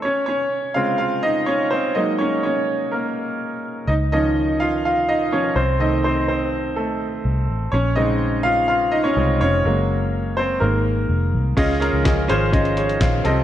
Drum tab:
CC |----------------|----------------|----------------|----------------|
HH |----------------|----------------|----------------|----------------|
CP |----------------|----------------|----------------|----------------|
SD |----------------|----------------|----------------|----------------|
BD |----------------|----------------|----------------|----------------|

CC |----------------|----------------|x---------------|
HH |----------------|----------------|x-x-x-x-xxxxx-x-|
CP |----------------|----------------|----x-------x---|
SD |----------------|----------------|----o-------o---|
BD |----------------|----------------|o---o---o---o---|